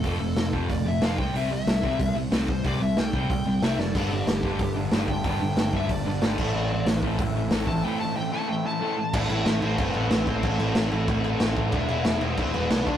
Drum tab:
CC |--------|--------|--------|x-------|
HH |o-o-o-o-|o-o-o-o-|o-o-o-o-|o-o-o-o-|
SD |--o---o-|--o---o-|--o---oo|--o---o-|
BD |o--oo--o|---oo--o|o--oo---|o--oo--o|

CC |-------x|--------|--------|xxxxxxxx|
HH |o-o-o-o-|--o-o-o-|--------|--------|
SD |--o---o-|--o---o-|--------|--o---o-|
BD |o--oo--o|---oo--o|--------|o---o--o|

CC |xxxxxxxx|xxxxxxxx|
HH |--------|--------|
SD |--o---o-|--o---o-|
BD |o---o--o|o---o--o|